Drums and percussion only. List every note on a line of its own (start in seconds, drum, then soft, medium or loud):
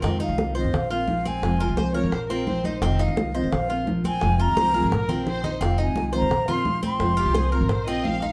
0.04 high bongo medium
0.22 high bongo soft
0.22 high conga soft
0.38 high bongo medium
0.38 high conga loud
0.56 high conga soft
0.74 high bongo medium
0.74 high conga soft
0.74 low conga medium
0.90 high bongo soft
0.90 high conga soft
1.08 high bongo soft
1.08 low bongo medium
1.08 high conga medium
1.26 high bongo soft
1.26 high conga medium
1.43 high bongo medium
1.43 high conga soft
1.60 high bongo soft
1.60 high conga soft
1.77 high bongo medium
1.77 high conga loud
1.95 high conga soft
2.12 high bongo medium
2.12 high conga soft
2.30 high bongo soft
2.30 high conga soft
2.47 high bongo soft
2.47 low bongo medium
2.47 high conga medium
2.64 high bongo soft
2.64 high conga medium
2.82 high bongo medium
2.82 high conga soft
2.99 high bongo soft
2.99 high conga soft
3.17 high bongo medium
3.17 high conga loud
3.35 high conga soft
3.52 high bongo medium
3.52 high conga soft
3.52 low conga medium
3.70 high bongo soft
3.70 high conga soft
3.87 high bongo soft
3.87 low bongo medium
3.87 high conga medium
4.04 high bongo soft
4.04 high conga medium
4.21 high bongo medium
4.21 high conga soft
4.39 high bongo soft
4.39 high conga soft
4.57 high bongo medium
4.57 high conga loud
4.74 high conga medium
4.91 high bongo medium
4.91 high conga medium
5.09 high bongo soft
5.09 low conga medium
5.27 high bongo soft
5.27 low bongo medium
5.27 low conga medium
5.44 high bongo soft
5.44 low conga medium
5.61 high bongo medium
5.61 high conga soft
5.78 high bongo soft
5.78 high conga soft
5.96 high bongo medium
5.96 high conga medium
6.13 high conga soft
6.31 high bongo medium
6.31 high conga soft
6.31 low conga medium
6.48 high bongo soft
6.48 high conga soft
6.48 low conga medium
6.65 high bongo soft
6.65 low bongo medium
6.65 high conga loud
6.83 high bongo soft
6.83 high conga medium
7.00 high bongo medium
7.00 high conga soft
7.17 high bongo soft
7.17 high conga soft
7.34 high bongo medium
7.34 high conga medium
7.53 high conga soft
7.69 high bongo medium
7.69 high conga soft
7.87 high bongo soft
7.87 high conga soft
8.05 high bongo soft
8.05 low bongo medium
8.05 high conga medium
8.22 high bongo soft
8.22 high conga medium